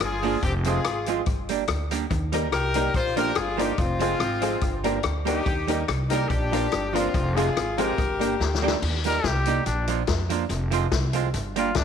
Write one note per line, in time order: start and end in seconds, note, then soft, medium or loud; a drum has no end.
0.00 0.36 G1 medium
0.00 0.44 F4 medium
0.00 0.44 G#4 loud
0.00 cross-stick loud
0.00 closed hi-hat medium
0.23 0.36 F3 medium
0.23 0.36 A#3 loud
0.23 0.37 D4 loud
0.23 0.37 F4 medium
0.23 open hi-hat medium
0.42 0.78 F1 loud
0.42 0.53 C4 medium
0.42 0.53 G4 medium
0.42 kick loud
0.42 closed hi-hat medium
0.64 0.78 F3 medium
0.64 0.79 G#3 medium
0.64 0.79 C4 medium
0.64 1.23 F4 medium
0.64 0.79 F4 medium
0.64 1.24 G#4 medium
0.64 closed hi-hat medium
0.85 1.21 G#1 loud
0.85 cross-stick loud
0.85 closed hi-hat medium
1.06 1.20 F3 medium
1.06 1.21 G#3 medium
1.06 1.21 C4 medium
1.06 1.21 F4 medium
1.06 closed hi-hat medium
1.26 1.62 G1 loud
1.26 kick loud
1.26 closed hi-hat medium
1.49 1.62 G3 medium
1.49 1.63 A#3 medium
1.49 1.63 D4 medium
1.49 1.63 G4 medium
1.49 closed hi-hat medium
1.67 2.04 D2 medium
1.67 cross-stick loud
1.67 closed hi-hat medium
1.91 2.04 G3 medium
1.91 2.04 A#3 medium
1.91 2.05 D4 medium
1.91 2.05 G4 medium
1.91 closed hi-hat medium
2.11 2.52 D#2 loud
2.11 kick loud
2.11 closed hi-hat medium
2.32 2.46 G3 medium
2.32 2.46 A#3 medium
2.32 2.48 D#4 medium
2.32 2.46 D#4 medium
2.32 2.48 G4 medium
2.32 2.47 G4 medium
2.32 2.48 A#4 loud
2.32 closed hi-hat medium
2.52 2.88 C2 loud
2.52 2.92 G4 medium
2.52 2.92 A#4 loud
2.52 cross-stick loud
2.52 closed hi-hat medium
2.74 2.88 G3 medium
2.74 2.88 A#3 medium
2.74 2.90 D#4 medium
2.74 2.89 D#4 medium
2.74 2.90 G4 medium
2.74 2.89 G4 loud
2.74 2.90 A#4 loud
2.74 closed hi-hat medium
2.94 3.30 A#1 loud
2.94 3.17 F4 medium
2.94 3.16 C5 loud
2.94 kick loud
2.94 closed hi-hat medium
3.16 3.30 F3 medium
3.16 3.30 A#3 loud
3.16 3.31 D4 medium
3.16 3.30 D4 medium
3.16 3.32 F4 medium
3.16 3.31 F4 loud
3.16 3.36 G4 medium
3.16 3.35 A#4 loud
3.16 3.32 A#4 loud
3.16 closed hi-hat medium
3.35 3.72 G1 medium
3.35 3.60 F4 medium
3.35 3.59 G#4 loud
3.35 cross-stick loud
3.35 closed hi-hat medium
3.57 3.71 F3 medium
3.57 3.72 A#3 loud
3.57 3.72 D4 medium
3.57 3.74 D4 medium
3.57 3.72 F4 medium
3.57 3.74 F4 medium
3.57 3.79 G4 medium
3.57 3.74 A#4 loud
3.57 closed hi-hat medium
3.62 3.80 D#4 medium
3.78 4.14 F1 loud
3.78 5.02 C4 medium
3.78 5.01 F4 loud
3.78 kick loud
3.78 closed hi-hat medium
4.00 4.13 F3 medium
4.00 4.14 G#3 medium
4.00 4.16 C4 medium
4.00 4.14 C4 medium
4.00 4.14 F4 medium
4.00 4.16 F4 medium
4.00 4.16 G#4 loud
4.00 closed hi-hat medium
4.20 4.56 G#1 loud
4.20 cross-stick loud
4.20 closed hi-hat medium
4.42 4.55 F3 medium
4.42 4.56 G#3 medium
4.42 4.57 C4 medium
4.42 4.56 C4 medium
4.42 4.57 F4 medium
4.42 4.56 F4 medium
4.42 4.58 G#4 loud
4.42 closed hi-hat medium
4.61 4.98 G1 loud
4.61 kick loud
4.61 closed hi-hat medium
4.84 4.97 G3 medium
4.84 4.98 A#3 medium
4.84 4.99 D4 medium
4.84 4.98 D4 medium
4.84 4.99 G4 medium
4.84 5.00 A#4 loud
4.84 closed hi-hat medium
5.03 5.40 D2 medium
5.03 cross-stick loud
5.03 closed hi-hat medium
5.25 5.39 G3 medium
5.25 5.39 A#3 medium
5.25 5.41 D4 medium
5.25 5.40 D4 medium
5.25 5.85 D#4 medium
5.25 5.84 G4 medium
5.25 5.41 G4 medium
5.25 5.40 G4 medium
5.25 5.42 A#4 loud
5.25 closed hi-hat medium
5.46 5.82 D#2 loud
5.46 kick loud
5.46 closed hi-hat medium
5.67 5.81 G3 medium
5.67 5.82 A#3 medium
5.67 5.83 D#4 medium
5.67 5.82 D#4 medium
5.67 5.84 G4 medium
5.67 5.82 G4 loud
5.67 5.84 A#4 loud
5.67 closed hi-hat loud
5.88 6.24 C2 loud
5.88 cross-stick loud
5.88 closed hi-hat medium
6.10 6.24 G3 medium
6.10 6.25 A#3 medium
6.10 6.25 D#4 loud
6.10 6.25 D#4 medium
6.10 6.25 G4 medium
6.10 6.27 G4 medium
6.10 6.25 G4 loud
6.10 6.29 A#4 medium
6.10 6.26 A#4 loud
6.10 closed hi-hat medium
6.28 6.66 A#1 loud
6.28 6.95 D4 medium
6.28 6.94 G4 loud
6.28 kick loud
6.28 closed hi-hat medium
6.52 6.65 F3 medium
6.52 6.66 A#3 medium
6.52 6.67 D4 medium
6.52 6.66 D4 medium
6.52 6.68 F4 medium
6.52 6.67 F4 medium
6.52 6.68 A#4 loud
6.52 closed hi-hat medium
6.72 7.08 G1 medium
6.72 cross-stick loud
6.72 closed hi-hat medium
6.93 7.07 F3 medium
6.93 7.08 A#3 medium
6.93 7.37 C4 medium
6.93 7.09 D4 loud
6.93 7.08 D4 medium
6.93 7.35 F4 medium
6.93 7.10 F4 medium
6.93 7.08 F4 medium
6.93 7.10 A#4 loud
6.93 closed hi-hat medium
7.14 7.50 F1 loud
7.14 kick loud
7.14 closed hi-hat medium
7.35 7.50 F3 medium
7.35 7.50 G#3 medium
7.35 7.51 C4 medium
7.35 7.50 C4 medium
7.35 7.78 F4 medium
7.35 7.51 F4 medium
7.35 7.78 G#4 loud
7.35 7.52 G#4 loud
7.35 closed hi-hat loud
7.57 7.92 G#1 medium
7.57 cross-stick loud
7.57 closed hi-hat medium
7.77 7.92 F3 medium
7.77 7.92 G#3 loud
7.77 7.93 C4 medium
7.77 7.92 C4 medium
7.77 7.93 F4 medium
7.77 8.63 G4 medium
7.77 7.94 G#4 loud
7.77 8.62 A#4 medium
7.77 closed hi-hat medium
7.98 8.34 G1 loud
7.98 kick loud
7.98 closed hi-hat medium
8.19 8.33 G3 medium
8.19 8.35 A#3 medium
8.19 8.34 A#3 medium
8.19 8.35 D4 medium
8.19 8.34 D4 medium
8.19 8.36 G4 loud
8.19 8.34 G4 medium
8.19 closed hi-hat medium
8.40 8.76 D2 medium
8.40 snare medium
8.55 snare medium
8.62 8.76 G3 medium
8.62 8.77 A#3 medium
8.62 8.76 A#3 loud
8.62 8.78 D4 medium
8.62 8.76 D4 medium
8.62 8.78 G4 loud
8.62 8.77 G4 medium
8.68 snare loud
8.82 9.18 D#2 loud
8.82 crash medium
9.04 9.18 G3 medium
9.04 9.18 A#3 medium
9.04 9.19 D#4 medium
9.04 9.19 G4 medium
9.04 9.28 A#4 loud
9.04 closed hi-hat medium
9.24 9.60 C2 loud
9.24 9.66 G4 loud
9.24 kick loud
9.24 snare loud
9.24 closed hi-hat medium
9.45 9.60 G3 medium
9.45 9.60 A#3 medium
9.45 9.60 D#4 medium
9.45 9.61 G4 medium
9.45 closed hi-hat medium
9.66 10.02 A#1 loud
9.66 9.87 D4 medium
9.66 closed hi-hat medium
9.87 10.01 F3 medium
9.87 10.02 A#3 medium
9.87 10.02 D4 medium
9.87 10.02 F4 medium
9.87 closed hi-hat medium
10.07 10.44 F2 medium
10.07 kick loud
10.07 snare loud
10.07 closed hi-hat medium
10.30 10.43 F3 medium
10.30 10.44 A#3 medium
10.30 10.44 D4 medium
10.30 10.44 F4 medium
10.30 closed hi-hat medium
10.49 10.85 F1 loud
10.49 closed hi-hat medium
10.71 10.85 F3 medium
10.71 10.86 G#3 medium
10.71 10.86 C4 medium
10.71 10.86 F4 loud
10.71 closed hi-hat medium
10.92 11.28 C2 loud
10.92 kick loud
10.92 snare loud
10.92 closed hi-hat medium
11.13 11.27 F3 medium
11.13 11.28 G#3 medium
11.13 11.28 C4 medium
11.13 11.28 F4 medium
11.13 closed hi-hat medium
11.34 11.70 G1 loud
11.34 closed hi-hat medium
11.56 11.69 G3 medium
11.56 11.70 A#3 loud
11.56 11.70 D4 loud
11.56 11.75 F4 medium
11.56 11.71 G4 loud
11.56 closed hi-hat medium
11.74 11.84 D2 medium
11.74 11.84 D4 medium
11.74 kick loud
11.74 snare loud
11.74 closed hi-hat medium